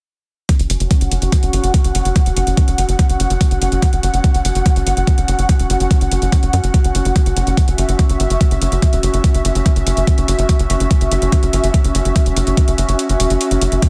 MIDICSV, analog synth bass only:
0, 0, Header, 1, 2, 480
1, 0, Start_track
1, 0, Tempo, 416667
1, 564, Time_signature, 4, 2, 24, 8
1, 16001, End_track
2, 0, Start_track
2, 0, Title_t, "Analog synth bass"
2, 0, Program_c, 0, 38
2, 685, Note_on_c, 0, 30, 83
2, 769, Note_off_c, 0, 30, 0
2, 805, Note_on_c, 0, 30, 98
2, 889, Note_off_c, 0, 30, 0
2, 925, Note_on_c, 0, 30, 92
2, 1009, Note_off_c, 0, 30, 0
2, 1165, Note_on_c, 0, 30, 86
2, 1249, Note_off_c, 0, 30, 0
2, 1285, Note_on_c, 0, 30, 95
2, 1369, Note_off_c, 0, 30, 0
2, 1405, Note_on_c, 0, 30, 92
2, 1489, Note_off_c, 0, 30, 0
2, 1645, Note_on_c, 0, 30, 89
2, 1729, Note_off_c, 0, 30, 0
2, 1765, Note_on_c, 0, 31, 98
2, 1849, Note_off_c, 0, 31, 0
2, 1885, Note_on_c, 0, 30, 88
2, 1969, Note_off_c, 0, 30, 0
2, 2125, Note_on_c, 0, 30, 89
2, 2209, Note_off_c, 0, 30, 0
2, 2245, Note_on_c, 0, 30, 99
2, 2329, Note_off_c, 0, 30, 0
2, 2365, Note_on_c, 0, 30, 92
2, 2449, Note_off_c, 0, 30, 0
2, 2605, Note_on_c, 0, 28, 82
2, 2689, Note_off_c, 0, 28, 0
2, 2725, Note_on_c, 0, 30, 97
2, 2809, Note_off_c, 0, 30, 0
2, 2845, Note_on_c, 0, 30, 89
2, 2929, Note_off_c, 0, 30, 0
2, 3085, Note_on_c, 0, 30, 86
2, 3169, Note_off_c, 0, 30, 0
2, 3205, Note_on_c, 0, 30, 98
2, 3289, Note_off_c, 0, 30, 0
2, 3325, Note_on_c, 0, 30, 92
2, 3409, Note_off_c, 0, 30, 0
2, 3565, Note_on_c, 0, 30, 86
2, 3649, Note_off_c, 0, 30, 0
2, 3685, Note_on_c, 0, 30, 99
2, 3769, Note_off_c, 0, 30, 0
2, 3805, Note_on_c, 0, 30, 92
2, 3889, Note_off_c, 0, 30, 0
2, 4045, Note_on_c, 0, 30, 90
2, 4129, Note_off_c, 0, 30, 0
2, 4165, Note_on_c, 0, 30, 99
2, 4249, Note_off_c, 0, 30, 0
2, 4285, Note_on_c, 0, 30, 91
2, 4369, Note_off_c, 0, 30, 0
2, 4525, Note_on_c, 0, 30, 85
2, 4609, Note_off_c, 0, 30, 0
2, 4645, Note_on_c, 0, 30, 100
2, 4729, Note_off_c, 0, 30, 0
2, 4765, Note_on_c, 0, 30, 93
2, 4849, Note_off_c, 0, 30, 0
2, 5005, Note_on_c, 0, 30, 85
2, 5089, Note_off_c, 0, 30, 0
2, 5125, Note_on_c, 0, 30, 100
2, 5209, Note_off_c, 0, 30, 0
2, 5245, Note_on_c, 0, 30, 93
2, 5329, Note_off_c, 0, 30, 0
2, 5485, Note_on_c, 0, 30, 86
2, 5569, Note_off_c, 0, 30, 0
2, 5605, Note_on_c, 0, 31, 99
2, 5689, Note_off_c, 0, 31, 0
2, 5725, Note_on_c, 0, 30, 92
2, 5809, Note_off_c, 0, 30, 0
2, 5965, Note_on_c, 0, 30, 86
2, 6049, Note_off_c, 0, 30, 0
2, 6085, Note_on_c, 0, 30, 97
2, 6169, Note_off_c, 0, 30, 0
2, 6205, Note_on_c, 0, 30, 91
2, 6289, Note_off_c, 0, 30, 0
2, 6445, Note_on_c, 0, 28, 85
2, 6529, Note_off_c, 0, 28, 0
2, 6565, Note_on_c, 0, 30, 100
2, 6649, Note_off_c, 0, 30, 0
2, 6685, Note_on_c, 0, 30, 88
2, 6769, Note_off_c, 0, 30, 0
2, 6925, Note_on_c, 0, 30, 85
2, 7009, Note_off_c, 0, 30, 0
2, 7045, Note_on_c, 0, 30, 95
2, 7129, Note_off_c, 0, 30, 0
2, 7165, Note_on_c, 0, 30, 92
2, 7249, Note_off_c, 0, 30, 0
2, 7405, Note_on_c, 0, 30, 87
2, 7489, Note_off_c, 0, 30, 0
2, 7525, Note_on_c, 0, 42, 98
2, 7609, Note_off_c, 0, 42, 0
2, 7645, Note_on_c, 0, 30, 86
2, 7729, Note_off_c, 0, 30, 0
2, 7885, Note_on_c, 0, 30, 87
2, 7969, Note_off_c, 0, 30, 0
2, 8005, Note_on_c, 0, 30, 100
2, 8089, Note_off_c, 0, 30, 0
2, 8125, Note_on_c, 0, 30, 93
2, 8209, Note_off_c, 0, 30, 0
2, 8365, Note_on_c, 0, 30, 88
2, 8449, Note_off_c, 0, 30, 0
2, 8485, Note_on_c, 0, 30, 96
2, 8569, Note_off_c, 0, 30, 0
2, 8605, Note_on_c, 0, 30, 90
2, 8689, Note_off_c, 0, 30, 0
2, 8845, Note_on_c, 0, 30, 85
2, 8929, Note_off_c, 0, 30, 0
2, 8965, Note_on_c, 0, 30, 99
2, 9049, Note_off_c, 0, 30, 0
2, 9085, Note_on_c, 0, 30, 94
2, 9169, Note_off_c, 0, 30, 0
2, 9325, Note_on_c, 0, 30, 88
2, 9409, Note_off_c, 0, 30, 0
2, 9445, Note_on_c, 0, 31, 98
2, 9529, Note_off_c, 0, 31, 0
2, 9565, Note_on_c, 0, 30, 88
2, 9649, Note_off_c, 0, 30, 0
2, 9805, Note_on_c, 0, 30, 89
2, 9889, Note_off_c, 0, 30, 0
2, 9925, Note_on_c, 0, 30, 99
2, 10009, Note_off_c, 0, 30, 0
2, 10045, Note_on_c, 0, 30, 94
2, 10129, Note_off_c, 0, 30, 0
2, 10285, Note_on_c, 0, 28, 87
2, 10369, Note_off_c, 0, 28, 0
2, 10405, Note_on_c, 0, 30, 98
2, 10489, Note_off_c, 0, 30, 0
2, 10525, Note_on_c, 0, 30, 89
2, 10609, Note_off_c, 0, 30, 0
2, 10765, Note_on_c, 0, 30, 86
2, 10849, Note_off_c, 0, 30, 0
2, 10885, Note_on_c, 0, 30, 99
2, 10969, Note_off_c, 0, 30, 0
2, 11005, Note_on_c, 0, 30, 94
2, 11089, Note_off_c, 0, 30, 0
2, 11245, Note_on_c, 0, 30, 86
2, 11329, Note_off_c, 0, 30, 0
2, 11365, Note_on_c, 0, 30, 100
2, 11449, Note_off_c, 0, 30, 0
2, 11485, Note_on_c, 0, 30, 91
2, 11569, Note_off_c, 0, 30, 0
2, 11725, Note_on_c, 0, 30, 90
2, 11809, Note_off_c, 0, 30, 0
2, 11845, Note_on_c, 0, 30, 98
2, 11929, Note_off_c, 0, 30, 0
2, 11965, Note_on_c, 0, 30, 93
2, 12049, Note_off_c, 0, 30, 0
2, 12205, Note_on_c, 0, 30, 85
2, 12289, Note_off_c, 0, 30, 0
2, 12325, Note_on_c, 0, 30, 102
2, 12409, Note_off_c, 0, 30, 0
2, 12445, Note_on_c, 0, 30, 92
2, 12529, Note_off_c, 0, 30, 0
2, 12685, Note_on_c, 0, 30, 85
2, 12769, Note_off_c, 0, 30, 0
2, 12804, Note_on_c, 0, 30, 98
2, 12889, Note_off_c, 0, 30, 0
2, 12925, Note_on_c, 0, 30, 91
2, 13009, Note_off_c, 0, 30, 0
2, 13165, Note_on_c, 0, 30, 87
2, 13249, Note_off_c, 0, 30, 0
2, 13285, Note_on_c, 0, 31, 103
2, 13369, Note_off_c, 0, 31, 0
2, 13405, Note_on_c, 0, 30, 88
2, 13489, Note_off_c, 0, 30, 0
2, 13645, Note_on_c, 0, 30, 89
2, 13729, Note_off_c, 0, 30, 0
2, 13765, Note_on_c, 0, 30, 101
2, 13849, Note_off_c, 0, 30, 0
2, 13884, Note_on_c, 0, 30, 88
2, 13969, Note_off_c, 0, 30, 0
2, 14124, Note_on_c, 0, 28, 83
2, 14209, Note_off_c, 0, 28, 0
2, 14244, Note_on_c, 0, 30, 100
2, 14329, Note_off_c, 0, 30, 0
2, 14364, Note_on_c, 0, 30, 90
2, 14449, Note_off_c, 0, 30, 0
2, 14604, Note_on_c, 0, 30, 89
2, 14689, Note_off_c, 0, 30, 0
2, 14724, Note_on_c, 0, 30, 97
2, 14809, Note_off_c, 0, 30, 0
2, 14844, Note_on_c, 0, 30, 94
2, 14929, Note_off_c, 0, 30, 0
2, 15085, Note_on_c, 0, 30, 89
2, 15169, Note_off_c, 0, 30, 0
2, 15205, Note_on_c, 0, 28, 100
2, 15289, Note_off_c, 0, 28, 0
2, 15325, Note_on_c, 0, 30, 90
2, 15409, Note_off_c, 0, 30, 0
2, 15565, Note_on_c, 0, 30, 90
2, 15649, Note_off_c, 0, 30, 0
2, 15685, Note_on_c, 0, 30, 98
2, 15769, Note_off_c, 0, 30, 0
2, 15805, Note_on_c, 0, 30, 93
2, 15889, Note_off_c, 0, 30, 0
2, 16001, End_track
0, 0, End_of_file